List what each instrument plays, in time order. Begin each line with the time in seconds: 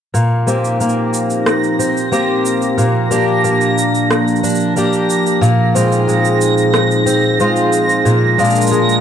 0.13 ambient pad A#2 F3 C4 D#4 G4, twelve-string acoustic guitar A#2, synth texture A#6, shaker
0.47 twelve-string acoustic guitar A#3 C4 G4, shaker
0.65 shaker
0.80 twelve-string acoustic guitar A#3, shaker
0.89 shaker
1.14 shaker
1.30 shaker
1.46 cross-stick, shaker
1.64 shaker
1.79 twelve-string acoustic guitar C4, shaker
1.97 shaker
2.12 twelve-string acoustic guitar A#3 C4 G4, shaker
2.46 shaker
2.62 shaker
2.77 twelve-string acoustic guitar A#2, ambient pad A#3, shaker
3.11 twelve-string acoustic guitar A#3 D4 G4, shaker
3.44 twelve-string acoustic guitar A#3, shaker
3.61 shaker
3.78 shaker
3.95 shaker
4.11 cross-stick, shaker
4.28 shaker
4.36 shaker
4.43 twelve-string acoustic guitar D4, shaker
4.49 shaker
4.52 shaker
4.55 shaker
4.60 shaker
4.76 twelve-string acoustic guitar A#3 D4 G4, shaker
4.93 shaker
5.10 shaker
5.27 shaker
5.41 twelve-string acoustic guitar A#2, ambient pad A#2 D#4 G#4, shaker
5.75 twelve-string acoustic guitar G#3 C4 F4, shaker
5.92 shaker
6.07 twelve-string acoustic guitar G#3, shaker
6.25 shaker
6.41 shaker
6.58 shaker
6.74 cross-stick, shaker
6.91 shaker
7.06 twelve-string acoustic guitar C4, shaker
7.40 twelve-string acoustic guitar G#3 C4 F4, shaker
7.56 shaker
7.73 shaker
7.90 shaker
8.05 twelve-string acoustic guitar A#2, ambient pad G#3 D4 A#4, shaker
8.38 twelve-string acoustic guitar G#3 D4 F4, shaker
8.45 shaker
8.50 shaker
8.56 shaker
8.61 shaker
8.67 shaker
8.71 twelve-string acoustic guitar G#3, shaker
8.89 shaker